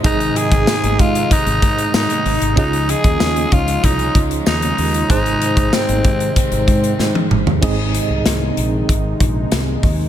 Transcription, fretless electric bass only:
\new Staff \with { instrumentName = "Fretless electric bass" } { \clef bass \time 4/4 \key aes \major \tempo 4 = 95 aes,,8 r16 aes,,16 r16 aes,,16 aes,8 r16 aes,,16 aes,8 aes,16 r16 aes,,16 aes,,16 | des,8. ees,16 ees,8 des,8 c,8 des,8 ees,8 ees,8 | aes,,8 r16 aes,,16 r16 aes,,16 aes,8 r16 aes,,16 aes,8 aes,16 r16 aes,,16 ees,16 | aes,,8. c,16 c,8 bes,,8 aes,,8 bes,,8 c,8 ees,8 | }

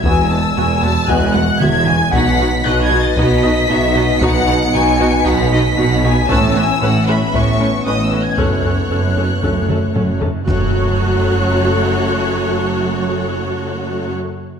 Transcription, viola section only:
\new Staff \with { instrumentName = "Viola section" } { \time 4/4 \key fis \dorian \tempo 4 = 115 <b fis'>8 <b fis'>8 <b fis'>8 <b fis'>8 <b fis'>8 <b fis'>8 <b fis'>8 <b fis'>8 | <dis' fis'>8 <dis' fis'>8 <dis' fis'>8 <dis' fis'>8 <dis' fis'>8 <dis' fis'>8 <dis' fis'>8 <dis' fis'>8 | <dis' fis'>8 <dis' fis'>8 <dis' fis'>8 <dis' fis'>8 <dis' fis'>8 <dis' fis'>8 <dis' fis'>8 <dis' fis'>8 | <cis' b'>8 <cis' b'>8 <cis' b'>8 <cis' b'>8 <cis' b'>8 <cis' b'>8 <cis' b'>8 <cis' b'>8 |
<cis' a'>8 <cis' a'>8 <cis' a'>8 <cis' a'>8 <cis' a'>8 <cis' a'>8 <cis' a'>8 <cis' a'>8 | <fis fis'>1~ | <fis fis'>1 | }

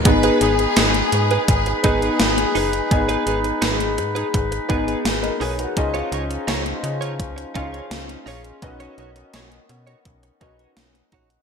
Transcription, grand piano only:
\new Staff \with { instrumentName = "Grand piano" } { \time 4/4 \key gis \dorian \tempo 4 = 84 << { r1 | r2. r16 <ais' dis''>16 <gis' cis''>16 <fis' b'>16~ | <fis' b'>16 r2. r8. | r1 | } \\ { <b dis' gis'>4. r4 <b dis' gis'>4~ <b dis' gis'>16 r16 | <b dis' gis'>4. r4 <b dis' gis'>4~ <b dis' gis'>16 r16 | <cis' dis' eis' gis' dis''>4. r4 <cis' dis' eis' gis' eis''>4~ <cis' dis' eis' gis' eis''>16 r16 | <cis' dis' fis' b' dis''>4. r4 <cis' dis' fis' b' dis''>4~ <cis' dis' fis' b' dis''>16 r16 | } >> }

